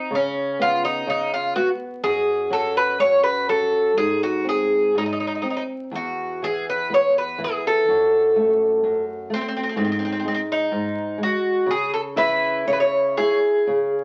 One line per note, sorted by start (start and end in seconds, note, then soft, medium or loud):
0.00 0.14 D#4 medium
0.11 1.06 C#3 medium
0.15 0.62 C#4 medium
0.60 1.05 B3 soft
0.60 0.84 F4 medium
0.85 1.08 D#4 medium
1.07 1.53 C#3 medium
1.07 1.33 D#4 medium
1.34 1.54 F4 medium
1.56 2.01 B3 soft
1.56 1.68 F#4 medium
2.03 3.92 F#2 medium
2.03 2.52 G#4 medium
2.50 2.97 F#3 soft
2.50 2.76 A4 medium
2.77 2.98 B4 medium
2.99 3.46 C#4 soft
2.99 3.22 C#5 medium
3.23 3.48 B4 medium
3.49 3.95 F#3 soft
3.49 3.97 A4 medium
3.97 4.94 G#2 medium
3.97 4.21 G#4 medium
4.23 4.46 F#4 medium
4.44 4.91 C4 soft
4.49 4.96 G#4 medium
4.95 5.41 G#2 soft
4.95 5.02 D#4 medium
5.06 5.10 D#4 soft
5.13 5.17 D#4 medium
5.20 5.25 D#4 soft
5.27 5.32 D#4 soft
5.35 5.40 D#4 soft
5.42 5.90 C4 soft
5.42 5.47 D#4 soft
5.50 5.55 D#4 soft
5.57 5.62 D#4 medium
5.91 7.82 E2 medium
5.95 6.44 F#4 medium
6.42 6.88 E3 soft
6.42 6.65 G#4 medium
6.70 6.92 B4 medium
6.90 7.36 B3 soft
6.94 7.14 C#5 medium
7.18 7.40 B4 medium
7.38 7.85 E3 soft
7.44 7.65 G#4 medium
7.67 9.04 A4 medium
7.88 8.82 F#2 medium
8.36 8.81 A3 soft
8.84 9.28 F#2 soft
9.30 9.75 A3 soft
9.30 9.38 C4 medium
9.41 9.45 C4 medium
9.48 9.52 C4 medium
9.57 9.60 C4 medium
9.63 9.67 C4 medium
9.69 9.74 C4 soft
9.76 10.71 G#2 medium
9.76 9.81 C4 soft
9.85 9.89 C4 soft
9.92 9.96 C4 medium
9.99 10.03 C4 soft
10.05 10.10 C4 medium
10.12 10.17 C4 soft
10.20 10.24 C4 medium
10.25 10.70 G#3 soft
10.25 10.32 C4 medium
10.34 10.39 C4 medium
10.52 11.23 D#4 medium
10.72 11.18 G#2 medium
11.18 11.65 G#3 soft
11.23 11.70 F#4 medium
11.66 12.66 C#3 medium
11.71 11.93 G#4 medium
11.94 12.00 A4 medium
12.16 12.64 E4 soft
12.16 13.17 E4 medium
12.16 12.67 B4 medium
12.67 13.15 C#3 soft
12.67 12.72 C#5 medium
12.73 12.80 B4 medium
12.80 13.37 C#5 medium
13.17 13.66 E4 soft
13.17 14.04 G#4 medium
13.67 14.04 C#3 medium